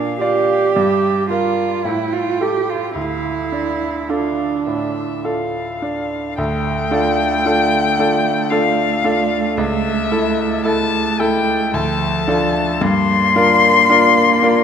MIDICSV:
0, 0, Header, 1, 4, 480
1, 0, Start_track
1, 0, Key_signature, -1, "minor"
1, 0, Tempo, 1100917
1, 1291, Tempo, 1138520
1, 1292, Time_signature, 3, 2, 24, 8
1, 2731, Tempo, 1071429
1, 6432, End_track
2, 0, Start_track
2, 0, Title_t, "Violin"
2, 0, Program_c, 0, 40
2, 0, Note_on_c, 0, 77, 54
2, 327, Note_off_c, 0, 77, 0
2, 330, Note_on_c, 0, 76, 53
2, 562, Note_off_c, 0, 76, 0
2, 564, Note_on_c, 0, 74, 51
2, 806, Note_on_c, 0, 79, 46
2, 812, Note_off_c, 0, 74, 0
2, 1288, Note_off_c, 0, 79, 0
2, 1290, Note_on_c, 0, 77, 41
2, 1712, Note_off_c, 0, 77, 0
2, 1768, Note_on_c, 0, 77, 44
2, 1994, Note_off_c, 0, 77, 0
2, 2010, Note_on_c, 0, 76, 58
2, 2255, Note_on_c, 0, 77, 58
2, 2261, Note_off_c, 0, 76, 0
2, 2729, Note_off_c, 0, 77, 0
2, 2732, Note_on_c, 0, 79, 108
2, 3684, Note_on_c, 0, 77, 94
2, 3691, Note_off_c, 0, 79, 0
2, 4161, Note_on_c, 0, 76, 95
2, 4167, Note_off_c, 0, 77, 0
2, 4642, Note_off_c, 0, 76, 0
2, 4645, Note_on_c, 0, 81, 94
2, 4890, Note_on_c, 0, 79, 91
2, 4897, Note_off_c, 0, 81, 0
2, 5133, Note_on_c, 0, 81, 86
2, 5140, Note_off_c, 0, 79, 0
2, 5617, Note_on_c, 0, 84, 117
2, 5624, Note_off_c, 0, 81, 0
2, 6432, Note_off_c, 0, 84, 0
2, 6432, End_track
3, 0, Start_track
3, 0, Title_t, "Grand piano"
3, 0, Program_c, 1, 0
3, 0, Control_c, 1, 64, 127
3, 0, Note_on_c, 1, 46, 56
3, 91, Note_on_c, 1, 65, 42
3, 93, Note_on_c, 1, 74, 47
3, 314, Note_off_c, 1, 46, 0
3, 315, Note_off_c, 1, 65, 0
3, 316, Note_off_c, 1, 74, 0
3, 333, Note_on_c, 1, 43, 52
3, 341, Control_c, 1, 64, 0
3, 421, Control_c, 1, 64, 127
3, 567, Note_on_c, 1, 65, 33
3, 570, Note_on_c, 1, 70, 36
3, 791, Note_off_c, 1, 65, 0
3, 792, Note_off_c, 1, 70, 0
3, 795, Note_off_c, 1, 43, 0
3, 806, Note_on_c, 1, 45, 46
3, 818, Control_c, 1, 64, 0
3, 893, Control_c, 1, 64, 127
3, 1049, Note_on_c, 1, 67, 32
3, 1051, Note_on_c, 1, 69, 36
3, 1274, Note_off_c, 1, 67, 0
3, 1275, Note_off_c, 1, 69, 0
3, 1276, Note_off_c, 1, 45, 0
3, 1288, Note_on_c, 1, 38, 41
3, 1301, Control_c, 1, 64, 0
3, 1366, Control_c, 1, 64, 127
3, 1528, Note_on_c, 1, 62, 35
3, 1767, Note_on_c, 1, 65, 30
3, 1770, Note_on_c, 1, 69, 37
3, 1914, Note_off_c, 1, 62, 0
3, 1994, Note_off_c, 1, 65, 0
3, 1996, Note_off_c, 1, 69, 0
3, 2012, Note_on_c, 1, 45, 31
3, 2252, Note_on_c, 1, 65, 33
3, 2255, Note_on_c, 1, 69, 37
3, 2400, Note_off_c, 1, 45, 0
3, 2479, Note_off_c, 1, 65, 0
3, 2480, Note_off_c, 1, 69, 0
3, 2497, Note_on_c, 1, 62, 35
3, 2713, Note_off_c, 1, 38, 0
3, 2732, Note_off_c, 1, 62, 0
3, 2732, Note_on_c, 1, 38, 64
3, 2740, Control_c, 1, 64, 0
3, 2803, Control_c, 1, 64, 127
3, 2967, Note_off_c, 1, 38, 0
3, 2971, Note_on_c, 1, 62, 49
3, 2972, Note_on_c, 1, 65, 51
3, 2974, Note_on_c, 1, 69, 53
3, 3195, Note_off_c, 1, 62, 0
3, 3196, Note_off_c, 1, 65, 0
3, 3196, Note_off_c, 1, 69, 0
3, 3214, Note_on_c, 1, 62, 43
3, 3216, Note_on_c, 1, 65, 51
3, 3219, Note_on_c, 1, 69, 51
3, 3434, Note_off_c, 1, 62, 0
3, 3435, Note_off_c, 1, 65, 0
3, 3436, Note_off_c, 1, 69, 0
3, 3454, Note_on_c, 1, 62, 42
3, 3456, Note_on_c, 1, 65, 47
3, 3458, Note_on_c, 1, 69, 49
3, 3670, Note_off_c, 1, 62, 0
3, 3671, Note_off_c, 1, 65, 0
3, 3672, Note_off_c, 1, 69, 0
3, 3686, Note_on_c, 1, 62, 47
3, 3689, Note_on_c, 1, 65, 51
3, 3691, Note_on_c, 1, 69, 56
3, 3906, Note_off_c, 1, 62, 0
3, 3907, Note_off_c, 1, 65, 0
3, 3908, Note_off_c, 1, 69, 0
3, 3925, Note_on_c, 1, 62, 51
3, 3927, Note_on_c, 1, 65, 43
3, 3929, Note_on_c, 1, 69, 48
3, 4148, Note_off_c, 1, 62, 0
3, 4148, Note_off_c, 1, 65, 0
3, 4150, Note_off_c, 1, 69, 0
3, 4164, Note_on_c, 1, 37, 64
3, 4174, Control_c, 1, 64, 0
3, 4236, Control_c, 1, 64, 127
3, 4399, Note_off_c, 1, 37, 0
3, 4405, Note_on_c, 1, 64, 53
3, 4406, Note_on_c, 1, 69, 57
3, 4629, Note_off_c, 1, 64, 0
3, 4629, Note_off_c, 1, 69, 0
3, 4645, Note_on_c, 1, 64, 51
3, 4647, Note_on_c, 1, 69, 55
3, 4870, Note_off_c, 1, 64, 0
3, 4871, Note_off_c, 1, 69, 0
3, 4889, Note_on_c, 1, 64, 48
3, 4892, Note_on_c, 1, 69, 56
3, 5115, Note_off_c, 1, 64, 0
3, 5116, Note_off_c, 1, 69, 0
3, 5132, Note_on_c, 1, 38, 66
3, 5141, Control_c, 1, 64, 0
3, 5228, Control_c, 1, 64, 127
3, 5367, Note_off_c, 1, 38, 0
3, 5373, Note_on_c, 1, 62, 51
3, 5377, Note_on_c, 1, 65, 52
3, 5377, Note_on_c, 1, 69, 60
3, 5597, Note_off_c, 1, 62, 0
3, 5599, Note_off_c, 1, 65, 0
3, 5599, Note_off_c, 1, 69, 0
3, 5615, Note_on_c, 1, 43, 73
3, 5624, Control_c, 1, 64, 0
3, 5696, Control_c, 1, 64, 127
3, 5851, Note_off_c, 1, 43, 0
3, 5858, Note_on_c, 1, 62, 57
3, 5859, Note_on_c, 1, 65, 57
3, 5862, Note_on_c, 1, 70, 61
3, 6082, Note_off_c, 1, 62, 0
3, 6082, Note_off_c, 1, 65, 0
3, 6083, Note_off_c, 1, 70, 0
3, 6099, Note_on_c, 1, 62, 57
3, 6101, Note_on_c, 1, 65, 57
3, 6104, Note_on_c, 1, 70, 62
3, 6318, Note_off_c, 1, 62, 0
3, 6319, Note_off_c, 1, 65, 0
3, 6320, Note_off_c, 1, 70, 0
3, 6336, Note_on_c, 1, 62, 55
3, 6339, Note_on_c, 1, 65, 58
3, 6341, Note_on_c, 1, 70, 59
3, 6432, Note_off_c, 1, 62, 0
3, 6432, Note_off_c, 1, 65, 0
3, 6432, Note_off_c, 1, 70, 0
3, 6432, End_track
4, 0, Start_track
4, 0, Title_t, "Cello"
4, 0, Program_c, 2, 42
4, 0, Note_on_c, 2, 62, 67
4, 75, Note_off_c, 2, 62, 0
4, 92, Note_on_c, 2, 67, 76
4, 560, Note_off_c, 2, 67, 0
4, 568, Note_on_c, 2, 65, 63
4, 808, Note_on_c, 2, 64, 59
4, 814, Note_off_c, 2, 65, 0
4, 929, Note_on_c, 2, 65, 62
4, 935, Note_off_c, 2, 64, 0
4, 1057, Note_on_c, 2, 67, 58
4, 1063, Note_off_c, 2, 65, 0
4, 1175, Note_on_c, 2, 65, 53
4, 1181, Note_off_c, 2, 67, 0
4, 1290, Note_off_c, 2, 65, 0
4, 1293, Note_on_c, 2, 64, 67
4, 1767, Note_on_c, 2, 62, 49
4, 1773, Note_off_c, 2, 64, 0
4, 2254, Note_off_c, 2, 62, 0
4, 2732, Note_on_c, 2, 57, 56
4, 5133, Note_on_c, 2, 53, 64
4, 5140, Note_off_c, 2, 57, 0
4, 5620, Note_on_c, 2, 58, 67
4, 5626, Note_off_c, 2, 53, 0
4, 6432, Note_off_c, 2, 58, 0
4, 6432, End_track
0, 0, End_of_file